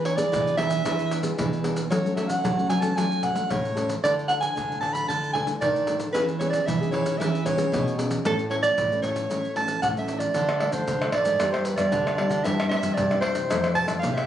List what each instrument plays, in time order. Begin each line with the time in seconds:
Already playing: nylon-string guitar E3
0.05 soprano saxophone C#5, pandeiro
0.16 nylon-string guitar B3 D4 G#4, soprano saxophone D5, pandeiro, maracas
0.32 nylon-string guitar B2 E3, pandeiro, maracas, surdo
0.47 pandeiro, maracas
0.57 nylon-string guitar E3 B3 D4 G#4, soprano saxophone E5, pandeiro
0.70 pandeiro, maracas
0.84 nylon-string guitar E3 B3 D4 G#4, pandeiro, maracas, surdo
0.99 pandeiro, maracas
1.11 pandeiro, maracas
1.22 nylon-string guitar B3 D4 G#4, pandeiro, maracas
1.37 nylon-string guitar B2 E3, pandeiro, maracas, surdo
1.53 pandeiro, maracas
1.63 nylon-string guitar B3 D4 G#4, pandeiro, maracas
1.76 pandeiro, maracas
1.90 nylon-string guitar F#3 A3 C#4 A4, soprano saxophone C#5, pandeiro, maracas, surdo
2.04 nylon-string guitar A3 C#4 A4, pandeiro, maracas
2.15 nylon-string guitar A3 C#4 A4, soprano saxophone E5, pandeiro, maracas
2.28 soprano saxophone F#5, pandeiro, maracas
2.43 nylon-string guitar C#3 F#3, pandeiro, maracas, surdo
2.57 nylon-string guitar A3 C#4 A4, pandeiro, maracas
2.69 nylon-string guitar F#3, soprano saxophone G#5, pandeiro, maracas
2.81 nylon-string guitar A3 C#4 A4, soprano saxophone A5, pandeiro, maracas
2.96 nylon-string guitar F#3 A3 C#4 A4, soprano saxophone G#5, pandeiro, maracas, surdo
3.12 pandeiro, maracas
3.23 soprano saxophone F#5, pandeiro, maracas, surdo
3.34 nylon-string guitar A3 C#4 A4, pandeiro, maracas
3.49 nylon-string guitar A2 C#3, soprano saxophone C#5, pandeiro, maracas, surdo
3.65 pandeiro, maracas
3.75 nylon-string guitar A3 C#4 A4, pandeiro, maracas
3.89 pandeiro, maracas
4.03 nylon-string guitar D3 E3 A3 D4, soprano saxophone D5, pandeiro, maracas, surdo
4.19 pandeiro, maracas
4.28 nylon-string guitar E3 A3 D4, soprano saxophone F#5, pandeiro, maracas
4.41 soprano saxophone G#5, pandeiro, maracas
4.55 nylon-string guitar A2 D3, pandeiro, maracas, surdo
4.69 nylon-string guitar E3 A3 D4, pandeiro, maracas
4.80 nylon-string guitar D3, soprano saxophone A5, pandeiro
4.93 soprano saxophone B5, pandeiro, maracas
5.07 nylon-string guitar D3 E3 A3 D4, soprano saxophone A5, pandeiro, maracas, surdo
5.24 pandeiro, maracas
5.33 nylon-string guitar E3 A3 D4, soprano saxophone G#5, pandeiro, surdo
5.47 nylon-string guitar E3 A3 D4, pandeiro, maracas
5.61 nylon-string guitar A2 D#3, soprano saxophone D5, pandeiro, maracas, surdo
5.76 pandeiro, maracas
5.87 nylon-string guitar E3 A3 D4, pandeiro, maracas
6.00 pandeiro, maracas
6.12 nylon-string guitar E3 B3 C#4 G#4, soprano saxophone B4, pandeiro, maracas, surdo
6.28 pandeiro, maracas
6.39 nylon-string guitar B3 C#4 G#4, soprano saxophone C#5, pandeiro, maracas
6.50 soprano saxophone D5, pandeiro, maracas
6.66 nylon-string guitar B2 E3, soprano saxophone E5, pandeiro, maracas, surdo
6.80 nylon-string guitar B3 C#4 G#4, pandeiro, maracas
6.91 nylon-string guitar E3, soprano saxophone C#5, pandeiro
7.06 pandeiro, maracas
7.18 nylon-string guitar E3 B3 C#4 G#4, soprano saxophone E5, pandeiro, maracas, surdo
7.35 pandeiro, maracas
7.44 nylon-string guitar B3 C#4 G#4, soprano saxophone C#5, pandeiro, maracas, surdo
7.56 nylon-string guitar B3 C#4 G#4, pandeiro, maracas
7.71 nylon-string guitar B2, pandeiro, maracas, surdo
7.88 pandeiro, maracas
7.97 nylon-string guitar B3 C#4 G#4, pandeiro, maracas
8.11 pandeiro, maracas
8.24 nylon-string guitar A2 E3 A3 C#4, soprano saxophone A4, pandeiro, maracas, surdo
8.39 pandeiro, maracas
8.49 nylon-string guitar E3 A3 C#4, soprano saxophone C#5, pandeiro
8.62 soprano saxophone D5, pandeiro, maracas
8.77 nylon-string guitar A2 E3, pandeiro, maracas, surdo
8.91 nylon-string guitar E3 A3 C#4, pandeiro, maracas
9.02 nylon-string guitar A2, soprano saxophone C#5, pandeiro, maracas
9.16 pandeiro, maracas
9.30 nylon-string guitar A2 E3 A3 C#4, pandeiro, maracas, surdo
9.45 pandeiro, maracas
9.55 nylon-string guitar E3 A3 C#4, soprano saxophone A5, pandeiro
9.68 pandeiro, maracas
9.82 nylon-string guitar A2 E3, soprano saxophone F#5, pandeiro, maracas, surdo
9.96 nylon-string guitar E3 A3 C#4, soprano saxophone E5, pandeiro, maracas
10.08 pandeiro, maracas
10.19 soprano saxophone D5, pandeiro, maracas
10.34 nylon-string guitar D3 F3 A3 D4, pandeiro, maracas, surdo
10.49 pandeiro, tamborim, maracas
10.60 nylon-string guitar F3 A3 D4, pandeiro, tamborim
10.72 nylon-string guitar D3 F3 A3 D4, soprano saxophone C5, pandeiro, maracas
10.87 nylon-string guitar A2 D3, pandeiro, maracas, surdo
11.01 nylon-string guitar F3 A3 D4, pandeiro, tamborim, maracas
11.12 soprano saxophone D5, pandeiro, tamborim
11.25 nylon-string guitar G#2, pandeiro, maracas
11.39 nylon-string guitar G2 G3 B3 D4, pandeiro, tamborim, maracas, surdo
11.52 soprano saxophone C5, pandeiro, tamborim, maracas
11.65 soprano saxophone B4, pandeiro, maracas
11.76 nylon-string guitar G2 G3 B3 D4, soprano saxophone D5, pandeiro, tamborim, maracas
11.92 nylon-string guitar D3, pandeiro, maracas, surdo
12.07 pandeiro, tamborim, maracas
12.14 nylon-string guitar G3 B3 D4, soprano saxophone D5
12.18 pandeiro, tamborim
12.29 nylon-string guitar D3, pandeiro, maracas
12.44 nylon-string guitar G2 E3 C4 D4, soprano saxophone E5, pandeiro, maracas, surdo
12.60 pandeiro, tamborim, maracas
12.69 nylon-string guitar E3 C4 D4, soprano saxophone E5, pandeiro, tamborim
12.83 nylon-string guitar G2, pandeiro, maracas
12.94 nylon-string guitar G2, soprano saxophone D5, pandeiro, maracas, surdo
13.11 nylon-string guitar E3 C4 D4, pandeiro, tamborim, maracas
13.21 soprano saxophone C5, pandeiro, tamborim
13.35 nylon-string guitar C3, pandeiro, maracas
13.50 nylon-string guitar F2 E3 A3 C4, pandeiro, tamborim, maracas, surdo
13.64 pandeiro, tamborim, maracas
13.75 soprano saxophone A5, pandeiro, surdo
13.87 nylon-string guitar F2 E3 A3 C4, pandeiro, tamborim, maracas
13.99 nylon-string guitar C3, soprano saxophone F5
14.03 pandeiro, maracas, surdo
14.14 soprano saxophone E5, pandeiro, tamborim, maracas